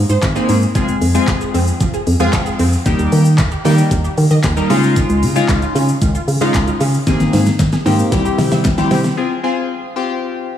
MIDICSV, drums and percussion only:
0, 0, Header, 1, 2, 480
1, 0, Start_track
1, 0, Key_signature, -4, "minor"
1, 0, Tempo, 526316
1, 687, Time_signature, 4, 2, 24, 8
1, 9648, End_track
2, 0, Start_track
2, 0, Title_t, "Drums"
2, 85, Note_on_c, 9, 82, 69
2, 177, Note_off_c, 9, 82, 0
2, 206, Note_on_c, 9, 39, 95
2, 207, Note_on_c, 9, 36, 117
2, 207, Note_on_c, 9, 42, 86
2, 207, Note_on_c, 9, 82, 86
2, 208, Note_off_c, 9, 39, 0
2, 208, Note_on_c, 9, 39, 127
2, 298, Note_off_c, 9, 36, 0
2, 298, Note_off_c, 9, 42, 0
2, 298, Note_off_c, 9, 82, 0
2, 299, Note_off_c, 9, 39, 0
2, 325, Note_on_c, 9, 82, 49
2, 416, Note_off_c, 9, 82, 0
2, 446, Note_on_c, 9, 46, 72
2, 446, Note_on_c, 9, 82, 53
2, 537, Note_off_c, 9, 46, 0
2, 537, Note_off_c, 9, 82, 0
2, 569, Note_on_c, 9, 82, 65
2, 660, Note_off_c, 9, 82, 0
2, 686, Note_on_c, 9, 36, 125
2, 686, Note_on_c, 9, 42, 79
2, 686, Note_on_c, 9, 82, 80
2, 777, Note_off_c, 9, 36, 0
2, 777, Note_off_c, 9, 42, 0
2, 777, Note_off_c, 9, 82, 0
2, 805, Note_on_c, 9, 82, 67
2, 896, Note_off_c, 9, 82, 0
2, 926, Note_on_c, 9, 46, 75
2, 926, Note_on_c, 9, 82, 51
2, 1017, Note_off_c, 9, 46, 0
2, 1017, Note_off_c, 9, 82, 0
2, 1046, Note_on_c, 9, 82, 88
2, 1137, Note_off_c, 9, 82, 0
2, 1165, Note_on_c, 9, 36, 125
2, 1165, Note_on_c, 9, 39, 125
2, 1167, Note_off_c, 9, 39, 0
2, 1167, Note_on_c, 9, 39, 86
2, 1167, Note_on_c, 9, 42, 73
2, 1167, Note_on_c, 9, 82, 74
2, 1256, Note_off_c, 9, 36, 0
2, 1258, Note_off_c, 9, 42, 0
2, 1258, Note_off_c, 9, 82, 0
2, 1259, Note_off_c, 9, 39, 0
2, 1285, Note_on_c, 9, 82, 46
2, 1376, Note_off_c, 9, 82, 0
2, 1409, Note_on_c, 9, 46, 74
2, 1409, Note_on_c, 9, 82, 55
2, 1501, Note_off_c, 9, 46, 0
2, 1501, Note_off_c, 9, 82, 0
2, 1527, Note_on_c, 9, 82, 72
2, 1618, Note_off_c, 9, 82, 0
2, 1646, Note_on_c, 9, 36, 115
2, 1647, Note_on_c, 9, 42, 83
2, 1647, Note_on_c, 9, 82, 84
2, 1738, Note_off_c, 9, 36, 0
2, 1738, Note_off_c, 9, 42, 0
2, 1738, Note_off_c, 9, 82, 0
2, 1767, Note_on_c, 9, 82, 57
2, 1858, Note_off_c, 9, 82, 0
2, 1886, Note_on_c, 9, 46, 64
2, 1886, Note_on_c, 9, 82, 49
2, 1977, Note_off_c, 9, 46, 0
2, 1977, Note_off_c, 9, 82, 0
2, 2004, Note_on_c, 9, 82, 68
2, 2096, Note_off_c, 9, 82, 0
2, 2126, Note_on_c, 9, 39, 93
2, 2126, Note_on_c, 9, 42, 84
2, 2126, Note_on_c, 9, 82, 88
2, 2127, Note_off_c, 9, 39, 0
2, 2127, Note_on_c, 9, 36, 117
2, 2127, Note_on_c, 9, 39, 124
2, 2218, Note_off_c, 9, 36, 0
2, 2218, Note_off_c, 9, 39, 0
2, 2218, Note_off_c, 9, 42, 0
2, 2218, Note_off_c, 9, 82, 0
2, 2244, Note_on_c, 9, 82, 51
2, 2335, Note_off_c, 9, 82, 0
2, 2365, Note_on_c, 9, 46, 72
2, 2365, Note_on_c, 9, 82, 53
2, 2456, Note_off_c, 9, 46, 0
2, 2456, Note_off_c, 9, 82, 0
2, 2490, Note_on_c, 9, 82, 70
2, 2581, Note_off_c, 9, 82, 0
2, 2607, Note_on_c, 9, 36, 124
2, 2607, Note_on_c, 9, 42, 82
2, 2607, Note_on_c, 9, 82, 80
2, 2698, Note_off_c, 9, 36, 0
2, 2698, Note_off_c, 9, 42, 0
2, 2698, Note_off_c, 9, 82, 0
2, 2726, Note_on_c, 9, 82, 65
2, 2817, Note_off_c, 9, 82, 0
2, 2847, Note_on_c, 9, 46, 72
2, 2847, Note_on_c, 9, 82, 53
2, 2938, Note_off_c, 9, 46, 0
2, 2938, Note_off_c, 9, 82, 0
2, 2966, Note_on_c, 9, 82, 85
2, 3057, Note_off_c, 9, 82, 0
2, 3084, Note_on_c, 9, 39, 119
2, 3085, Note_on_c, 9, 36, 127
2, 3086, Note_on_c, 9, 42, 77
2, 3086, Note_on_c, 9, 82, 79
2, 3088, Note_off_c, 9, 39, 0
2, 3088, Note_on_c, 9, 39, 90
2, 3176, Note_off_c, 9, 36, 0
2, 3178, Note_off_c, 9, 42, 0
2, 3178, Note_off_c, 9, 82, 0
2, 3179, Note_off_c, 9, 39, 0
2, 3204, Note_on_c, 9, 82, 46
2, 3295, Note_off_c, 9, 82, 0
2, 3330, Note_on_c, 9, 46, 76
2, 3330, Note_on_c, 9, 82, 53
2, 3421, Note_off_c, 9, 46, 0
2, 3421, Note_off_c, 9, 82, 0
2, 3448, Note_on_c, 9, 82, 74
2, 3539, Note_off_c, 9, 82, 0
2, 3567, Note_on_c, 9, 36, 118
2, 3568, Note_on_c, 9, 42, 84
2, 3568, Note_on_c, 9, 82, 83
2, 3658, Note_off_c, 9, 36, 0
2, 3659, Note_off_c, 9, 42, 0
2, 3659, Note_off_c, 9, 82, 0
2, 3689, Note_on_c, 9, 82, 55
2, 3780, Note_off_c, 9, 82, 0
2, 3808, Note_on_c, 9, 46, 65
2, 3808, Note_on_c, 9, 82, 49
2, 3899, Note_off_c, 9, 46, 0
2, 3899, Note_off_c, 9, 82, 0
2, 3926, Note_on_c, 9, 82, 69
2, 4017, Note_off_c, 9, 82, 0
2, 4047, Note_on_c, 9, 39, 94
2, 4048, Note_off_c, 9, 39, 0
2, 4048, Note_on_c, 9, 36, 118
2, 4048, Note_on_c, 9, 39, 127
2, 4048, Note_on_c, 9, 42, 85
2, 4048, Note_on_c, 9, 82, 85
2, 4139, Note_off_c, 9, 36, 0
2, 4139, Note_off_c, 9, 39, 0
2, 4139, Note_off_c, 9, 42, 0
2, 4139, Note_off_c, 9, 82, 0
2, 4166, Note_on_c, 9, 82, 52
2, 4257, Note_off_c, 9, 82, 0
2, 4286, Note_on_c, 9, 46, 70
2, 4286, Note_on_c, 9, 82, 52
2, 4377, Note_off_c, 9, 46, 0
2, 4377, Note_off_c, 9, 82, 0
2, 4410, Note_on_c, 9, 82, 69
2, 4501, Note_off_c, 9, 82, 0
2, 4527, Note_on_c, 9, 36, 127
2, 4527, Note_on_c, 9, 42, 81
2, 4527, Note_on_c, 9, 82, 81
2, 4618, Note_off_c, 9, 36, 0
2, 4618, Note_off_c, 9, 42, 0
2, 4618, Note_off_c, 9, 82, 0
2, 4646, Note_on_c, 9, 82, 67
2, 4737, Note_off_c, 9, 82, 0
2, 4767, Note_on_c, 9, 46, 72
2, 4767, Note_on_c, 9, 82, 53
2, 4858, Note_off_c, 9, 46, 0
2, 4858, Note_off_c, 9, 82, 0
2, 4885, Note_on_c, 9, 82, 88
2, 4977, Note_off_c, 9, 82, 0
2, 5005, Note_on_c, 9, 36, 127
2, 5005, Note_on_c, 9, 39, 125
2, 5007, Note_on_c, 9, 42, 77
2, 5007, Note_on_c, 9, 82, 72
2, 5008, Note_off_c, 9, 39, 0
2, 5008, Note_on_c, 9, 39, 94
2, 5096, Note_off_c, 9, 36, 0
2, 5098, Note_off_c, 9, 42, 0
2, 5098, Note_off_c, 9, 82, 0
2, 5099, Note_off_c, 9, 39, 0
2, 5124, Note_on_c, 9, 82, 46
2, 5216, Note_off_c, 9, 82, 0
2, 5250, Note_on_c, 9, 46, 75
2, 5250, Note_on_c, 9, 82, 55
2, 5341, Note_off_c, 9, 46, 0
2, 5341, Note_off_c, 9, 82, 0
2, 5367, Note_on_c, 9, 82, 73
2, 5459, Note_off_c, 9, 82, 0
2, 5487, Note_on_c, 9, 36, 120
2, 5487, Note_on_c, 9, 42, 86
2, 5487, Note_on_c, 9, 82, 83
2, 5578, Note_off_c, 9, 36, 0
2, 5578, Note_off_c, 9, 42, 0
2, 5578, Note_off_c, 9, 82, 0
2, 5608, Note_on_c, 9, 82, 56
2, 5699, Note_off_c, 9, 82, 0
2, 5728, Note_on_c, 9, 46, 64
2, 5728, Note_on_c, 9, 82, 49
2, 5819, Note_off_c, 9, 46, 0
2, 5819, Note_off_c, 9, 82, 0
2, 5846, Note_on_c, 9, 82, 69
2, 5937, Note_off_c, 9, 82, 0
2, 5966, Note_on_c, 9, 39, 91
2, 5968, Note_off_c, 9, 39, 0
2, 5968, Note_on_c, 9, 36, 117
2, 5968, Note_on_c, 9, 39, 127
2, 5968, Note_on_c, 9, 42, 85
2, 5968, Note_on_c, 9, 82, 85
2, 6059, Note_off_c, 9, 36, 0
2, 6059, Note_off_c, 9, 39, 0
2, 6059, Note_off_c, 9, 42, 0
2, 6059, Note_off_c, 9, 82, 0
2, 6086, Note_on_c, 9, 82, 53
2, 6177, Note_off_c, 9, 82, 0
2, 6207, Note_on_c, 9, 46, 74
2, 6207, Note_on_c, 9, 82, 52
2, 6298, Note_off_c, 9, 46, 0
2, 6298, Note_off_c, 9, 82, 0
2, 6330, Note_on_c, 9, 82, 71
2, 6422, Note_off_c, 9, 82, 0
2, 6447, Note_on_c, 9, 36, 127
2, 6448, Note_on_c, 9, 38, 64
2, 6448, Note_on_c, 9, 42, 83
2, 6448, Note_on_c, 9, 82, 80
2, 6538, Note_off_c, 9, 36, 0
2, 6539, Note_off_c, 9, 38, 0
2, 6539, Note_off_c, 9, 42, 0
2, 6539, Note_off_c, 9, 82, 0
2, 6566, Note_on_c, 9, 82, 63
2, 6567, Note_on_c, 9, 38, 55
2, 6657, Note_off_c, 9, 82, 0
2, 6658, Note_off_c, 9, 38, 0
2, 6688, Note_on_c, 9, 38, 70
2, 6688, Note_on_c, 9, 46, 71
2, 6688, Note_on_c, 9, 82, 52
2, 6779, Note_off_c, 9, 38, 0
2, 6779, Note_off_c, 9, 46, 0
2, 6779, Note_off_c, 9, 82, 0
2, 6807, Note_on_c, 9, 82, 83
2, 6808, Note_on_c, 9, 38, 63
2, 6898, Note_off_c, 9, 82, 0
2, 6899, Note_off_c, 9, 38, 0
2, 6925, Note_on_c, 9, 36, 126
2, 6927, Note_on_c, 9, 38, 80
2, 6927, Note_on_c, 9, 42, 76
2, 6927, Note_on_c, 9, 82, 74
2, 6928, Note_on_c, 9, 39, 88
2, 7017, Note_off_c, 9, 36, 0
2, 7018, Note_off_c, 9, 38, 0
2, 7019, Note_off_c, 9, 39, 0
2, 7019, Note_off_c, 9, 42, 0
2, 7019, Note_off_c, 9, 82, 0
2, 7044, Note_on_c, 9, 82, 45
2, 7046, Note_on_c, 9, 38, 68
2, 7135, Note_off_c, 9, 82, 0
2, 7138, Note_off_c, 9, 38, 0
2, 7167, Note_on_c, 9, 38, 87
2, 7170, Note_on_c, 9, 46, 74
2, 7170, Note_on_c, 9, 82, 54
2, 7258, Note_off_c, 9, 38, 0
2, 7261, Note_off_c, 9, 46, 0
2, 7261, Note_off_c, 9, 82, 0
2, 7288, Note_on_c, 9, 82, 73
2, 7379, Note_off_c, 9, 82, 0
2, 7407, Note_on_c, 9, 36, 122
2, 7407, Note_on_c, 9, 38, 96
2, 7407, Note_on_c, 9, 42, 86
2, 7407, Note_on_c, 9, 82, 83
2, 7498, Note_off_c, 9, 36, 0
2, 7498, Note_off_c, 9, 38, 0
2, 7498, Note_off_c, 9, 42, 0
2, 7498, Note_off_c, 9, 82, 0
2, 7528, Note_on_c, 9, 82, 57
2, 7619, Note_off_c, 9, 82, 0
2, 7647, Note_on_c, 9, 38, 93
2, 7647, Note_on_c, 9, 46, 68
2, 7647, Note_on_c, 9, 82, 47
2, 7738, Note_off_c, 9, 38, 0
2, 7738, Note_off_c, 9, 46, 0
2, 7738, Note_off_c, 9, 82, 0
2, 7765, Note_on_c, 9, 82, 68
2, 7767, Note_on_c, 9, 38, 92
2, 7856, Note_off_c, 9, 82, 0
2, 7859, Note_off_c, 9, 38, 0
2, 7884, Note_on_c, 9, 39, 97
2, 7886, Note_on_c, 9, 38, 105
2, 7887, Note_on_c, 9, 36, 121
2, 7887, Note_on_c, 9, 42, 84
2, 7887, Note_on_c, 9, 82, 87
2, 7975, Note_off_c, 9, 39, 0
2, 7977, Note_off_c, 9, 38, 0
2, 7978, Note_off_c, 9, 36, 0
2, 7978, Note_off_c, 9, 42, 0
2, 7978, Note_off_c, 9, 82, 0
2, 8005, Note_on_c, 9, 82, 52
2, 8007, Note_on_c, 9, 38, 89
2, 8096, Note_off_c, 9, 82, 0
2, 8098, Note_off_c, 9, 38, 0
2, 8126, Note_on_c, 9, 46, 73
2, 8126, Note_on_c, 9, 82, 50
2, 8127, Note_on_c, 9, 38, 114
2, 8217, Note_off_c, 9, 46, 0
2, 8217, Note_off_c, 9, 82, 0
2, 8218, Note_off_c, 9, 38, 0
2, 8247, Note_on_c, 9, 38, 97
2, 8249, Note_on_c, 9, 82, 69
2, 8338, Note_off_c, 9, 38, 0
2, 8341, Note_off_c, 9, 82, 0
2, 9648, End_track
0, 0, End_of_file